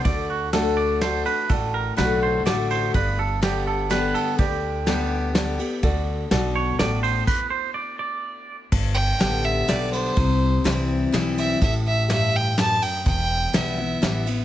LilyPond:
<<
  \new Staff \with { instrumentName = "Fiddle" } { \time 3/4 \key g \major \tempo 4 = 125 r2. | r2. | r2. | r2. |
r2. | r2. | r8 g''4 e''8 d''8 c''8~ | c''4. r4 e''8 |
e''8 e''8 e''8 g''8 a''8 g''8 | g''4 e''4. r8 | }
  \new Staff \with { instrumentName = "Clean electric guitar" } { \time 3/4 \key g \major d''8 fis'8 a'8 d''8 c''8 b'8 | a'8 bes'8 b'8 c''8 d''8 c''8 | b'8 a'8 g'8 a'8 b'8 a'8 | g'2. |
r4. cis''8 d''8 c''8 | b'8 c''8 d''8 d''4~ d''16 r16 | r2. | r2. |
r2. | r2. | }
  \new Staff \with { instrumentName = "Upright piano" } { \time 3/4 \key g \major <fis' a' d''>4 <fis' a' d''>4 <fis' a' d''>4 | <fis' a' d''>4 <fis' a' d''>4 <fis' a' d''>4 | <g' b' d''>4 <g' b' d''>4 <g' b' d''>4 | <g' b' d''>4 <g' b' d''>4 <g' b' d''>4 |
<fis' a' d''>4 <fis' a' d''>4 <fis' a' d''>4 | r2. | r2. | r2. |
r2. | r2. | }
  \new Staff \with { instrumentName = "Steel-string acoustic guitar" } { \time 3/4 \key g \major << { r4 <d a d' fis'>4 <d a d' fis'>8 <d' fis'>8 | r4 <d a d' fis'>4 <d a d' fis'>4 | r4 <d g b g'>4 <d g b g'>4 | r4 <d g b g'>4 <d g b g'>8 <b g'>8 |
r2. | r2. | r4 <d g b g'>4 <d g b g'>4 | r4 <e g c' e'>4 <e g c' e'>4 |
r2. | r4 <e g b e'>8 <b e'>8 <e g b e'>8 <b e'>8 | } \\ { d2 r4 | a,2 r4 | g,2 r4 | d2 r4 |
d4 b,4 a,4 | r2. | g,2 r4 | c2 r4 |
a,4 g,4 fis,4 | e,2 r4 | } >> }
  \new Staff \with { instrumentName = "Upright bass" } { \clef bass \time 3/4 \key g \major d,2. | a,,4 b,,4 a,,4 | g,,2. | d,2. |
d,4 b,,4 a,,4 | r2. | g,,4 a,,4 b,,4 | c,4 c,4 b,,4 |
a,,2. | e,,4 b,,4 a,,4 | }
  \new DrumStaff \with { instrumentName = "Drums" } \drummode { \time 3/4 <bd cymr>4 <cymr sn>4 <cymr sn>8 cymr8 | <bd cymr>4 <cymr sn>4 <cymr sn>8 cymr8 | <bd cymr>4 <cymr sn>4 <cymr sn>8 cymr8 | <bd cymr>4 <cymr sn>4 <cymr sn>8 cymr8 |
<bd cymr>4 <cymr sn>4 <cymr sn>8 cymr8 | <cymc bd>4 r4 r4 | <cymc bd>4 <cymr sn>4 <cymr sn>8 cymr8 | <bd cymr>4 <cymr sn>4 <cymr sn>8 cymr8 |
<bd cymr>4 <cymr sn>4 <cymr sn>8 cymr8 | <bd cymr>4 <cymr sn>4 <cymr sn>8 cymr8 | }
>>